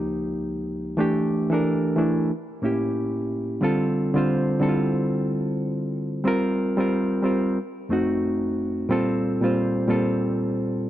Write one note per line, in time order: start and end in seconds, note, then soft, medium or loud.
0.00 1.00 C#2 loud
0.00 1.00 F3 loud
0.00 1.00 A#3 loud
0.00 1.00 D#4 loud
0.00 1.00 G4 loud
0.97 1.44 E3 loud
0.97 1.45 A3 loud
0.97 1.45 D4 medium
0.97 1.46 G4 loud
1.50 1.92 E3 medium
1.50 1.93 D4 medium
1.50 1.93 A4 medium
1.50 1.94 A#4 medium
1.96 2.29 E3 medium
1.96 2.30 A3 medium
1.96 2.31 D4 medium
1.96 2.31 E4 medium
2.62 3.53 A2 medium
2.62 3.54 A#3 medium
2.62 3.54 C#4 medium
2.62 3.54 E4 medium
2.62 3.55 G4 loud
3.61 4.08 D3 loud
3.61 4.08 G3 medium
3.61 4.09 C4 medium
3.61 4.09 F4 loud
3.61 4.10 A4 loud
4.14 4.56 D3 medium
4.14 4.56 G3 medium
4.14 4.57 C4 medium
4.14 4.57 F4 medium
4.14 4.58 C5 medium
4.60 5.81 D3 medium
4.60 5.82 G3 medium
4.60 5.82 C4 medium
4.60 4.69 E4 medium
4.60 5.83 A4 medium
4.69 5.86 F4 medium
6.24 6.72 G3 medium
6.24 6.72 C4 medium
6.24 6.73 F4 medium
6.24 6.73 A#4 loud
6.77 7.19 G3 medium
6.77 7.20 C4 medium
6.77 7.21 F4 medium
6.77 7.21 A#4 medium
7.23 7.56 G3 medium
7.23 7.57 C4 medium
7.23 7.58 F4 medium
7.23 7.58 A#4 medium
7.89 8.81 F2 medium
7.89 8.81 A3 medium
7.89 8.81 C4 medium
7.89 8.82 D#4 medium
7.89 8.82 F#4 medium
8.89 9.36 A#2 loud
8.89 9.36 G3 medium
8.89 9.37 C4 loud
8.89 9.37 F4 loud
8.89 9.38 A4 loud
9.42 9.84 A#2 medium
9.42 9.84 G3 medium
9.42 9.84 C4 medium
9.42 9.85 F4 medium
9.42 9.85 C5 medium
9.87 10.90 A#2 medium
9.87 10.90 G3 medium
9.87 10.90 C4 medium
9.87 10.90 F4 medium
9.87 10.90 A4 medium